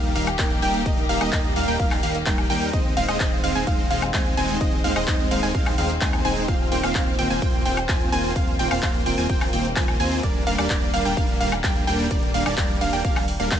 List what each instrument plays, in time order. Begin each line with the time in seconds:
Already playing: analog synth bass D#1, string section D#3 A#3 G4, supersaw synth G3 A#3 D#4 A#4 F5, synth pluck F5
0.04 closed hi-hat
0.16 analog synth bass D#1, supersaw synth G3 A#3 D#4 A#4 F5, synth pluck F5, open hi-hat
0.27 closed hi-hat, high woodblock
0.39 analog synth bass D#1, supersaw synth G3 A#3 D#4 A#4 G5, synth pluck G5, kick, clap, closed hi-hat
0.51 closed hi-hat
0.62 analog synth bass D#1, supersaw synth G3 A#3 D#4 A#4 G5, synth pluck G5, open hi-hat
0.74 closed hi-hat
0.86 analog synth bass D#1, supersaw synth G3 A#3 D#4 A#4 D#5, synth pluck D#5, kick, closed hi-hat
0.98 closed hi-hat
1.09 analog synth bass D#1, supersaw synth G3 A#3 D#4 A#4 F5, synth pluck F5, open hi-hat
1.21 analog synth bass D#1, supersaw synth G3 A#3 D#4 A#4 D#5, synth pluck D#5, closed hi-hat, high woodblock
1.32 analog synth bass D#1, supersaw synth G3 A#3, synth pluck D#5, kick, clap, closed hi-hat
1.44 closed hi-hat
1.56 analog synth bass D#1, supersaw synth G3 A#3 D#4 A#4 F5, synth pluck F5, open hi-hat
1.68 analog synth bass D#1, supersaw synth G3 A#3 D#4 A#4 G5, synth pluck G5, closed hi-hat
1.80 analog synth bass D#1, supersaw synth G3 A#3 D#4 A#4 F5, synth pluck F5, kick, closed hi-hat
1.91 clap, open hi-hat, high woodblock
2.03 analog synth bass D#1, supersaw synth G3 A#3 D#4 A#4 F5, synth pluck F5, open hi-hat
2.15 closed hi-hat
2.26 analog synth bass D#1, supersaw synth G3 A#3 D#4 A#4 G5, synth pluck G5, kick, clap, closed hi-hat
2.38 closed hi-hat, high woodblock
2.50 analog synth bass D#2, supersaw synth G3 A#3 D#4 A#4 G5, synth pluck G5, open hi-hat
2.62 closed hi-hat
2.73 analog synth bass D#1, supersaw synth G#3 C4 D#4 C5 D#5, string section G#3 C4, synth pluck D#5, kick, closed hi-hat
2.97 analog synth bass D#1, supersaw synth G#3 C4 D#4 C5 F5, synth pluck F5, open hi-hat
3.08 analog synth bass D#1, supersaw synth G#3 C4 D#4 C5 D#5, synth pluck D#5, closed hi-hat, high woodblock
3.20 analog synth bass D#1, supersaw synth G#3 C4 D#4 C5 D#5, synth pluck D#5, kick, clap, closed hi-hat
3.32 closed hi-hat
3.44 analog synth bass D#1, supersaw synth G#3 C4 D#4 C5 F5, synth pluck F5, open hi-hat
3.55 analog synth bass D#1, supersaw synth G#3 C4 D#4 C5 G#5, synth pluck G#5, closed hi-hat
3.67 analog synth bass D#1, supersaw synth G#3 C4 D#4 C5 F5, synth pluck F5, kick, closed hi-hat
3.79 closed hi-hat
3.91 analog synth bass D#1, supersaw synth G#3 C4 D#4 C5 F5, synth pluck F5, open hi-hat
4.02 closed hi-hat, high woodblock
4.14 analog synth bass D#1, supersaw synth G#3 C4 D#4 C5 G#5, synth pluck G#5, kick, clap, closed hi-hat
4.26 closed hi-hat
4.37 analog synth bass D#1, supersaw synth G#3 C4 D#4 C5 G#5, synth pluck G#5, open hi-hat
4.49 closed hi-hat
4.61 analog synth bass D#1, supersaw synth G#3 C4 D#4 C5 D#5, synth pluck D#5, kick, closed hi-hat
4.73 closed hi-hat
4.84 analog synth bass D#1, supersaw synth G#3 C4 D#4 C5 F5, synth pluck F5, open hi-hat
4.96 analog synth bass D#1, supersaw synth G#3 C4 D#4 C5 D#5, synth pluck D#5, high woodblock
5.08 analog synth bass D#1, supersaw synth G#3 C4 D#4 C5 D#5, synth pluck D#5, kick, clap, closed hi-hat
5.19 closed hi-hat
5.31 analog synth bass D#1, supersaw synth G#3 C4 D#4 C5 F5, synth pluck F5, open hi-hat
5.43 analog synth bass D#1, supersaw synth G#3 C4 D#4 C5 G#5, synth pluck G#5, closed hi-hat
5.55 analog synth bass D#1, supersaw synth G#3 C4 D#4 C5 F5, synth pluck F5, kick, closed hi-hat
5.66 clap, open hi-hat, high woodblock
5.78 analog synth bass D#1, supersaw synth G#3 C4 D#4 C5 F5, synth pluck F5, open hi-hat
5.90 closed hi-hat
6.01 analog synth bass D#2, supersaw synth G#3 C4 D#4 C5 G#5, synth pluck G#5, kick, clap, closed hi-hat
6.13 closed hi-hat, high woodblock
6.25 analog synth bass D#1, supersaw synth G#3 C4 D#4 C5 G#5, synth pluck G#5, open hi-hat
6.37 closed hi-hat
6.48 analog synth bass D#1, supersaw synth A#3 C4 F4 C5 F5, string section A#3, synth pluck F5, kick, closed hi-hat
6.72 analog synth bass D#1, supersaw synth A#3 C4 F4 C5 G5, synth pluck G5, open hi-hat
6.83 analog synth bass D#1, supersaw synth A#3 C4 F4 C5 F5, synth pluck F5, closed hi-hat, high woodblock
6.95 supersaw synth A#3 C4 F4 C5 F5, synth pluck F5, kick, clap, closed hi-hat
7.07 closed hi-hat
7.19 analog synth bass D#1, supersaw synth A#3 C4 F4 C5 G5, synth pluck G5, open hi-hat
7.30 analog synth bass D#1, supersaw synth A#3 C4 F4 C5 G#5, synth pluck G#5, closed hi-hat
7.42 analog synth bass D#1, supersaw synth A#3 C4 F4 C5 G5, synth pluck G5, kick, closed hi-hat
7.54 closed hi-hat
7.66 analog synth bass D#1, supersaw synth A#3 C4 F4 C5 G5, synth pluck G5, open hi-hat
7.77 closed hi-hat, high woodblock
7.89 analog synth bass D#1, supersaw synth A#3 C4 F4 C5 G#5, synth pluck G#5, kick, clap, closed hi-hat
8.01 closed hi-hat
8.12 analog synth bass D#1, supersaw synth A#3 C4 F4 C5 G#5, synth pluck G#5, open hi-hat
8.24 closed hi-hat
8.36 supersaw synth A#3 C4 F4 F5, synth pluck F5, kick, closed hi-hat
8.48 closed hi-hat
8.59 analog synth bass D#1, supersaw synth A#3 C4 F4 C5 G5, synth pluck G5, open hi-hat
8.71 analog synth bass D#1, supersaw synth A#3 C4 F4 C5 F5, synth pluck F5, closed hi-hat, high woodblock
8.82 analog synth bass D#1, supersaw synth A#3 C4 F4 C5 F5, synth pluck F5, kick, clap, closed hi-hat
8.94 closed hi-hat
9.06 analog synth bass D#1, supersaw synth A#3 C4 F4 C5 G5, synth pluck G5, open hi-hat
9.18 analog synth bass D#1, supersaw synth A#3 C4 F4 C5 G#5, synth pluck G#5, closed hi-hat
9.30 analog synth bass D#1, supersaw synth A#3 C4 F4 C5 G5, synth pluck G5, kick, closed hi-hat
9.41 clap, open hi-hat, high woodblock
9.53 analog synth bass D#1, supersaw synth A#3 C4 F4 C5 G5, synth pluck G5, open hi-hat
9.65 closed hi-hat
9.76 analog synth bass D#1, supersaw synth A#3 C4 F4 C5 G#5, synth pluck G#5, kick, clap, closed hi-hat
9.88 closed hi-hat, high woodblock
10.00 analog synth bass D#2, supersaw synth A#3 C4 F4 C5 G#5, synth pluck G#5, open hi-hat
10.12 closed hi-hat
10.23 analog synth bass D#1, string section D3 G3, supersaw synth G3 A#3 D4 A#4 D5, synth pluck D5, kick, closed hi-hat
10.47 analog synth bass D#1, supersaw synth G3 A#3 D4 A#4 F5, synth pluck F5, open hi-hat
10.58 analog synth bass D#1, supersaw synth G3 A#3 D4 A#4 D5, synth pluck D5, closed hi-hat, high woodblock
10.70 analog synth bass D#1, supersaw synth G3 A#3 D4 A#4 D5, synth pluck D5, kick, clap, closed hi-hat
10.82 closed hi-hat
10.94 analog synth bass D#1, supersaw synth G3 A#3 D4 A#4 F5, synth pluck F5, open hi-hat
11.05 analog synth bass D#1, supersaw synth G3 A#3 D4 A#4 G5, synth pluck G5, closed hi-hat
11.17 analog synth bass D#1, supersaw synth G3 A#3 D4 A#4 F5, synth pluck F5, kick, closed hi-hat
11.29 closed hi-hat
11.40 analog synth bass D#1, supersaw synth G3 A#3 D4 A#4 F5, synth pluck F5, open hi-hat
11.52 closed hi-hat, high woodblock
11.64 analog synth bass D#1, supersaw synth G3 A#3 D4 A#4 G5, synth pluck G5, kick, clap, closed hi-hat
11.76 closed hi-hat
11.87 analog synth bass D#1, supersaw synth G3 A#3 D4 A#4 G5, synth pluck G5, open hi-hat
11.99 closed hi-hat
12.11 analog synth bass D#1, supersaw synth G3 A#3 D4 D5, synth pluck D5, kick, closed hi-hat
12.23 closed hi-hat
12.34 analog synth bass D#1, supersaw synth G3 A#3 D4 A#4 F5, synth pluck F5, open hi-hat
12.46 analog synth bass D#1, supersaw synth G3 A#3 D4 A#4 D5, synth pluck D5, closed hi-hat, high woodblock
12.57 supersaw synth G3 A#3 D4 A#4, synth pluck D5, kick, clap, closed hi-hat
12.69 closed hi-hat
12.81 analog synth bass D#1, supersaw synth G3 A#3 D4 A#4 F5, synth pluck F5, open hi-hat
12.93 analog synth bass D#1, supersaw synth G3 A#3 D4 A#4 G5, synth pluck G5, closed hi-hat
13.05 analog synth bass D#1, supersaw synth G3 A#3 D4 A#4 F5, synth pluck F5, kick, closed hi-hat
13.16 clap, open hi-hat, high woodblock
13.28 open hi-hat
13.40 analog synth bass D#1, supersaw synth G3 A#3 D4 A#4 F5, synth pluck F5, closed hi-hat
13.51 analog synth bass D#1, supersaw synth G3 A#3 D4 A#4 F5, synth pluck F5, kick, snare, clap, closed hi-hat